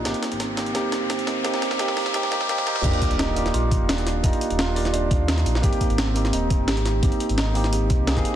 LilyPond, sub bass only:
\new Staff \with { instrumentName = "Sub bass" } { \clef bass \time 4/4 \key ees \major \tempo 4 = 172 aes,,16 r8 aes,,4~ aes,,16 ees,,8. aes,,4~ aes,,16 | aes,,16 r8 aes,,4.~ aes,,16 aes,4 ees,8 | ees,,16 r8 ees,,4~ ees,,16 bes,,8. ees,,4~ ees,,16 | ees,,16 r8 ees,,4.~ ees,,16 ees,4 bes,,8 |
aes,,16 r8 aes,,4~ aes,,16 ees,,8. aes,,4~ aes,,16 | aes,,16 r8 aes,,4.~ aes,,16 c,8. ees,,16 r8 | }